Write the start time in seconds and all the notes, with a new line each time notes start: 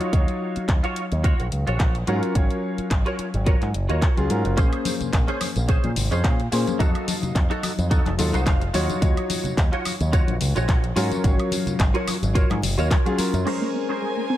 Already playing: F4 F#4 C#5
0.01 closed hi-hat
0.12 D#2 F#3 D#4 C#5 F5, kick, closed hi-hat
0.28 closed hi-hat
0.56 muted picked electric bass stroke, closed hi-hat
0.68 D#2, kick, clap, closed hi-hat
0.83 F4 F#4 C#5, closed hi-hat
0.96 closed hi-hat
1.12 D#2, closed hi-hat
1.24 F4 F#4 C#5, kick, closed hi-hat
1.40 A#1, closed hi-hat
1.52 C#2, closed hi-hat
1.67 A#1 F4 F#4 C#5, closed hi-hat
1.80 A#1, kick, clap, closed hi-hat
1.95 closed hi-hat
2.07 G#2 F#3 C#4 F4 F#4 A#4 C#5, closed hi-hat
2.23 closed hi-hat
2.35 G#1 F#3 C#4 C#5 F5, kick, closed hi-hat
2.50 closed hi-hat
2.78 muted picked electric bass stroke, closed hi-hat
2.91 G#1, kick, clap, closed hi-hat
3.06 F4 F#4 A#4 C#5, closed hi-hat
3.19 muted picked electric bass stroke, closed hi-hat
3.34 G#1, closed hi-hat
3.46 F4 F#4 A#4 C#5, kick, closed hi-hat
3.62 G#2, clap, closed hi-hat
3.74 F#1, closed hi-hat
3.89 D#2 F4 F#4 A#4 C#5, closed hi-hat
4.02 kick, clap, closed hi-hat
4.17 C#2 F#3 C#4 F4 G#4, closed hi-hat
4.29 G#2 F#3 C#4 F4 A#4, closed hi-hat
4.45 F#1, muted clean electric guitar stroke, closed hi-hat
4.57 A#1 A#3 C#4 G#4 C5, kick, closed hi-hat, tambourine
4.73 closed hi-hat, high woodblock
4.85 open hi-hat, tambourine, high conga
5.01 muted picked electric bass stroke, closed hi-hat, tambourine, low conga
5.13 A#1, kick, clap, closed hi-hat, tambourine
5.28 C#4 G#4 C5, closed hi-hat
5.41 open hi-hat, tambourine, high conga, high woodblock
5.56 A#1, closed hi-hat, tambourine
5.68 C#4 G#4 C5, kick, closed hi-hat, tambourine
5.84 A#2, closed hi-hat, high conga
5.96 G#1, open hi-hat, tambourine, low conga
6.11 F2 C#4 G#4 C5, closed hi-hat, tambourine
6.24 A#2, kick, clap, closed hi-hat, tambourine, high conga
6.40 closed hi-hat
6.52 A#2 A#3 C#4 G#4 C5, open hi-hat, tambourine
6.67 muted clean electric guitar stroke, closed hi-hat, tambourine, high conga
6.79 F2 F#3 D#4 F#4 A4 D#5 F5, kick, closed hi-hat, tambourine
6.95 closed hi-hat, high woodblock
7.08 open hi-hat, tambourine, high conga
7.22 muted picked electric bass stroke, closed hi-hat, tambourine, low conga
7.35 F2, kick, clap, closed hi-hat, tambourine
7.50 D#4 F#4 A4, closed hi-hat
7.63 muted picked electric bass stroke, open hi-hat, tambourine, high conga, high woodblock
7.78 F2, closed hi-hat, tambourine
7.90 D#4 F#4 A4, kick, closed hi-hat, tambourine
8.06 F1, clap, closed hi-hat, high conga
8.18 D#2 F#3 D#4 F4 A4, open hi-hat, tambourine, low conga
8.33 C2 D#4 F#4 C5, closed hi-hat, tambourine
8.46 F1 F5, kick, clap, closed hi-hat, tambourine, high conga
8.62 closed hi-hat
8.73 D#2 F#3 D#4 F4 F#4 C#5 F#5, open hi-hat, tambourine
8.90 closed hi-hat, tambourine, high conga
9.01 D#2 F#3 D#4 C#5, kick, closed hi-hat, tambourine
9.17 closed hi-hat, high woodblock
9.30 open hi-hat, tambourine, high conga
9.44 muted picked electric bass stroke, closed hi-hat, tambourine, low conga
9.57 D#2, kick, clap, closed hi-hat, tambourine
9.72 F4 F#4 C#5, closed hi-hat
9.85 open hi-hat, tambourine, high conga, high woodblock
10.00 D#2, closed hi-hat, tambourine
10.12 F4 F#4 C#5, kick, closed hi-hat, tambourine
10.28 A#1, closed hi-hat, high conga
10.41 C#2, open hi-hat, tambourine, low conga
10.55 A#1 F4 F#4 C#5, closed hi-hat, tambourine
10.68 kick, clap, closed hi-hat, tambourine, high conga
10.84 closed hi-hat
10.96 G#2 F#3 C#4 F4 F#4 A#4 C#5, open hi-hat, tambourine
11.11 closed hi-hat, tambourine, high conga
11.23 G#1 F#3 C#4 C#5 F5, kick, closed hi-hat, tambourine
11.39 closed hi-hat, high woodblock
11.51 open hi-hat, tambourine, high conga
11.66 muted picked electric bass stroke, closed hi-hat, tambourine, low conga
11.80 G#1, kick, clap, closed hi-hat, tambourine
11.94 F4 F#4 A#4 C#5, closed hi-hat
12.07 muted picked electric bass stroke, open hi-hat, tambourine, high conga, high woodblock
12.22 G#1, closed hi-hat, tambourine
12.35 F4 F#4 A#4 C#5, kick, closed hi-hat, tambourine
12.50 G#2, clap, closed hi-hat, high conga, high woodblock
12.62 F#1, open hi-hat, tambourine, low conga
12.78 D#2 F4 F#4 A#4 C#5, closed hi-hat, tambourine
12.91 kick, clap, closed hi-hat, tambourine, high conga
13.05 F#3 C#4 F4 G#4, closed hi-hat
13.18 F#3 C#4 F4 A#4, muted picked electric bass stroke, open hi-hat, tambourine
13.33 F#2, muted clean electric guitar stroke, closed hi-hat, tambourine, high conga
13.45 G#3 C#4 G#4 A#4 C5 G#5, crash
13.62 A#3
13.74 C4
13.89 C#4 G#4 A#4 C5
14.02 G#3
14.17 A#3
14.30 C4